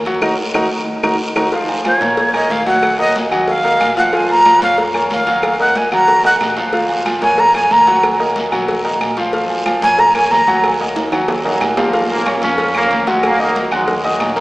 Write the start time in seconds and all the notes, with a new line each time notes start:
Already playing: D#2
0.05 F#3 F#4 F#5, cowbell, high conga, low agogo, short guiro
0.21 D#2 D#4 F#4 A#4, cowbell, high conga, high timbale, long guiro, claves
0.54 D#2 D#4 F#4 A#4, cowbell, high conga, high timbale, long guiro, claves
1.03 D#2 D#4 F#4 A#4, cowbell, high conga, high timbale, long guiro, claves
1.36 D#2 D#4 F#4 A#4, cowbell, high conga, high timbale, long guiro, claves
1.52 F3 F4 F5, cowbell, high conga, low agogo, long guiro
1.69 high conga, low agogo
1.85 F3 F4 C#5 F5, cowbell, high conga, low agogo, short guiro, claves
2.01 A#2 A#3 A#4 C#5, cowbell, high conga, short guiro
2.17 cowbell, high conga, low agogo, long guiro
2.34 A#3 A#4 C#5 D#5, high conga, low agogo, claves
2.50 D#2 F5, cowbell, high conga, short guiro
2.66 F#3 F#4 F#5, cowbell, high conga, low agogo, short guiro
2.83 cowbell, high conga, low agogo, long guiro, claves
2.99 A#3 A#4 D#5, high conga
3.15 cowbell, high conga, low agogo, short guiro
3.31 D#2 F#3 F#4 F#5, high conga, low conga, low agogo, short guiro, claves
3.48 F5, cowbell, high conga, long guiro
3.64 A#3 A#4 D#5, high conga, low agogo
3.80 A#1, cowbell, high conga, low agogo, short guiro, claves
3.96 F3 F4 F5 F#5, cowbell, high conga, short guiro
4.13 F3 F4 F5 G#5, cowbell, low agogo, long guiro
4.29 A#5, high conga, low agogo
4.45 F3 F4 F5, cowbell, high conga, low agogo, short guiro, claves
4.61 F2 A#3 A#4 C#5 F5, cowbell, high conga, short guiro
4.77 cowbell, high conga, low agogo, long guiro
4.94 A#3 A#4 C#5, high conga, low agogo, claves
5.10 D#2 F5, cowbell, high conga, low timbale, short guiro
5.26 F#3 F#4 F5, cowbell, high conga, low agogo, short guiro
5.42 cowbell, high conga, low agogo, long guiro, claves
5.59 A#3 A#4 D#5 F#5, high conga
5.75 G#5, cowbell, high conga, low agogo, short guiro
5.91 D#2 F#3 F#4 F#5 A#5, high conga, low conga, low agogo, short guiro, claves
6.07 cowbell, high conga, low conga, long guiro
6.24 A#3 A#4 D#5 F#5, high conga, low agogo
6.40 A#1, cowbell, high conga, low timbale, low agogo, short guiro, claves
6.57 F3 F4 F5, cowbell, high conga, short guiro
6.73 F3 F4 F5, cowbell, high conga, low agogo, long guiro
6.89 high conga, low agogo
7.06 F3 F4 F5, cowbell, high conga, low agogo, short guiro, claves
7.21 F2 A#3 A#4 C#5 G#5, cowbell, high conga, short guiro
7.38 A#5, cowbell, high conga, low agogo, long guiro
7.55 A#3 A#4 C#5 G#5, high conga, low agogo, claves
7.70 D#2 A#5, cowbell, high conga, short guiro
7.87 F#3 F#4 F#5, cowbell, high conga, low agogo, short guiro
8.03 cowbell, high conga, low agogo, long guiro, claves
8.19 A#3 A#4 D#5, high conga
8.36 cowbell, high conga, low agogo, short guiro
8.52 A#1 F#3 F#4 F#5, high conga, low conga, low agogo, short guiro, claves
8.68 cowbell, high conga, long guiro
8.85 A#3 A#4 D#5, high conga, low agogo
9.00 A#1, cowbell, high conga, low agogo, short guiro, claves
9.17 F3 F4 F5, cowbell, high conga, short guiro
9.33 F3 F4 F5, cowbell, high conga, low agogo, long guiro
9.50 high conga, low agogo
9.66 F3 F4 F5, cowbell, high conga, low agogo, short guiro, claves
9.82 F2 A#3 A#4 C#5 G#5, cowbell, high conga, short guiro
9.98 A#5, cowbell, high conga, low agogo, long guiro
10.15 A#3 A#4 C#5 G#5, high conga, low agogo, claves
10.30 D#2 A#5, cowbell, high conga, low timbale, short guiro
10.47 F#3 F#4 F#5, cowbell, high conga, low agogo, short guiro
10.64 cowbell, high conga, low agogo, long guiro, claves
10.80 A#3 A#4 D#5, high conga
10.96 cowbell, high conga, high timbale, low agogo, short guiro
11.12 D#2 F#3 F#4 F#5, high conga, low conga, high timbale, low agogo, short guiro, claves
11.28 cowbell, high conga, low conga, low timbale, long guiro
11.45 A#2 D#3 F#3 A#3 A#4 D#5, high conga, low agogo
11.60 A#1, cowbell, high conga, low timbale, low agogo, short guiro, claves
11.77 C#3 F3 A#3 F4 F5, cowbell, high conga, low timbale, short guiro
11.93 F3 F4 F5, cowbell, high conga, low agogo, long guiro
12.10 C#3 F3 A#3, high conga, low agogo
12.26 C#4 C#5 C#6, cowbell, high conga, low agogo, short guiro, claves
12.42 F2 F3 A#3 C#4, cowbell, high conga, short guiro
12.58 F4 F5 F6, cowbell, high conga, low agogo, long guiro
12.75 C#3 F3 A#3 C#4 C#5 C#6, high conga, low agogo, claves
12.90 D#2, cowbell, high conga, short guiro
13.07 F#3 G#3 F#4 F#5, cowbell, high conga, low agogo, short guiro
13.23 D#3 F#3 A#3, cowbell, high conga, low agogo, long guiro, claves
13.39 D#3 F#3 A#3 D#4 D#5 D#6, high conga
13.55 cowbell, high conga, low agogo, short guiro
13.71 D#2 D#3 G#3 F#4 F#5 F#6, high conga, low conga, low agogo, short guiro, claves
13.88 cowbell, high conga, low conga, long guiro
14.04 A#2 D#3 F#3 D#4 D#5 D#6, high conga, low agogo
14.20 A#1, cowbell, high conga, low timbale, low agogo, short guiro, claves
14.36 A#3 A#4 A#5, cowbell, high conga, short guiro